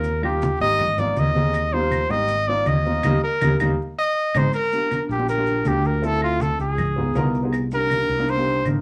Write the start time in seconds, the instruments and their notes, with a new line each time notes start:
Already playing: fretless electric bass D#2, trumpet A#4
0.04 high conga, maracas
0.22 grand piano G3 A#3 D#4 F4, trumpet G4, high conga, claves
0.42 high conga, maracas
0.60 fretless electric bass G#1, grand piano G3 A#3 D#4 G4, trumpet D#5, high conga, maracas
0.79 high conga, low conga, claves, maracas
0.97 grand piano A#3 C4 D#4 F4, trumpet D5, high conga, low conga, maracas
1.16 fretless electric bass D#2, trumpet D#5, high conga, maracas
1.34 grand piano A#3 C4 D#4 G#4, high conga, maracas
1.54 high conga, claves, maracas
1.72 grand piano G3 A#3 D#4 F4, trumpet C5, high conga
1.91 high conga, claves, maracas
2.09 fretless electric bass G#1, grand piano G3 A#3 D#4 G4, trumpet D#5, maracas
2.28 high conga, maracas
2.47 grand piano A#3 C4 D#4 F4, trumpet D5, high conga
2.66 fretless electric bass D#2, trumpet D#5, high conga, claves, maracas
2.85 grand piano A#3 C4 D#4 F4, high conga, maracas
3.03 fretless electric bass D#2, grand piano G3 A#3 D#4, high conga, claves, maracas
3.24 trumpet A#4
3.41 fretless electric bass D#2, grand piano G3 A#3 D#4, high conga, claves, maracas
3.60 fretless electric bass D#2, grand piano G3 A#3 D#4, high conga, claves, maracas
3.99 trumpet D#5
4.34 fretless electric bass G#1, grand piano G#3 C4 D#4, trumpet C5, high conga, claves, maracas
4.53 trumpet A#4, claves, maracas
4.72 grand piano A#3 D4 F4 G4, high conga, maracas
4.90 grand piano A#3 D4 F4 A#4, high conga, claves, maracas
5.09 fretless electric bass A#1, trumpet G4, maracas
5.18 grand piano A#3 D4 F4 G4
5.29 trumpet A#4, high conga, maracas
5.37 grand piano A#3 D4 F4 G4
5.47 high conga, maracas
5.65 fretless electric bass D2, grand piano A#3 D4 F4 G4, trumpet G4, high conga, claves, maracas
5.84 trumpet A#4, high conga, maracas
6.02 grand piano C4 E4 F4 A4, maracas
6.06 trumpet A4
6.22 trumpet F4, high conga, claves
6.40 trumpet A4, high conga, maracas
6.59 fretless electric bass C#2, trumpet G#4, maracas
6.78 high conga, low conga, claves, maracas
6.96 grand piano B3 D#4 F4 G#4, high conga, low conga
7.15 fretless electric bass C2, grand piano B3 D#4 F4 A#4, high conga, maracas
7.34 maracas
7.43 grand piano B3 D#4 F4 G#4
7.53 high conga, claves, maracas
7.71 grand piano A#3 D4 D#4 G4, trumpet A#4, high conga, maracas
7.90 grand piano A#3 D4 D#4 G4, high conga, claves, maracas
8.09 fretless electric bass C2, maracas
8.18 grand piano A#3 D4 D#4 A#4
8.28 trumpet C5, high conga, maracas
8.37 grand piano A#3 D4 D#4 G4
8.47 high conga
8.65 fretless electric bass G#1, grand piano A#3 D4 D#4 A#4, high conga, claves, maracas